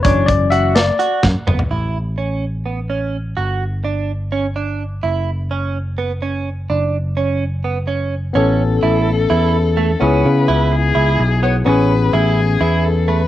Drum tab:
HH |x-x-x-x-x-----|--------------|--------------|--------------|
SD |------o---o---|--------------|--------------|--------------|
T2 |------------o-|--------------|--------------|--------------|
FT |-------------o|--------------|--------------|--------------|
BD |o-o-------o---|--------------|--------------|--------------|

HH |--------------|--------------|--------------|--------------|
SD |--------------|--------------|--------------|--------------|
T2 |--------------|--------------|--------------|--------------|
FT |--------------|--------------|--------------|--------------|
BD |--------------|--------------|--------------|--------------|